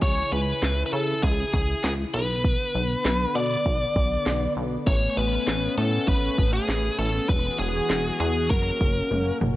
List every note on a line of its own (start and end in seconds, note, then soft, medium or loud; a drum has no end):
0.00 0.23 C#2 loud
0.00 2.12 C#3 medium
0.00 2.12 E4 medium
0.00 0.30 C#5 loud
0.00 2.10 G#5 medium
0.00 kick loud
0.32 0.54 C#2 medium
0.32 0.82 B4 medium
0.63 0.84 C#2 loud
0.63 snare loud
0.86 0.93 B4 medium
0.93 1.14 C#3 medium
0.93 1.23 A4 medium
1.23 1.44 C#2 loud
1.23 1.51 G#4 medium
1.23 kick medium
1.54 1.75 C#2 medium
1.54 1.83 G#4 medium
1.54 kick medium
1.84 2.05 C#2 loud
1.84 1.92 G#4 medium
1.84 snare loud
2.14 2.57 B1 loud
2.14 4.84 D3 medium
2.14 8.47 B3 medium
2.14 3.39 B4 loud
2.44 kick loud
2.75 2.96 B1 loud
3.05 3.26 B1 loud
3.05 snare loud
3.35 3.56 B2 loud
3.35 4.53 D5 loud
3.66 3.87 B1 loud
3.66 kick medium
3.96 4.17 B1 loud
3.96 kick medium
4.26 4.47 B1 loud
4.26 snare loud
4.56 4.78 B1 loud
4.87 5.08 A1 loud
4.87 7.27 A3 medium
4.87 7.27 C#4 medium
4.87 5.18 C#5 loud
4.87 kick loud
5.17 5.38 A1 medium
5.17 5.74 B4 loud
5.47 5.69 A1 loud
5.47 snare loud
5.78 5.99 A2 loud
5.78 6.08 A4 medium
6.08 6.29 A1 loud
6.08 6.50 B4 loud
6.08 kick medium
6.38 6.60 A1 loud
6.38 kick medium
6.53 6.98 G#4 medium
6.69 6.90 A1 loud
6.69 snare loud
6.99 7.20 A1 loud
6.99 7.29 A4 medium
7.29 7.50 E1 loud
7.29 8.49 E3 medium
7.29 9.56 F#4 medium
7.29 8.49 G#4 medium
7.29 7.57 B4 loud
7.29 kick loud
7.60 7.81 E1 loud
7.60 8.19 G#4 medium
7.90 8.11 E1 loud
7.90 snare loud
8.20 8.52 E2 loud
8.20 8.50 G#4 medium
8.50 8.72 F#1 loud
8.50 9.56 A#3 medium
8.50 9.56 C#4 medium
8.50 9.37 A#4 medium
8.50 kick medium
8.81 9.02 F#1 loud
8.81 kick medium
9.11 9.32 F#1 loud
9.11 high tom medium
9.41 9.56 F#1 loud
9.41 mid tom medium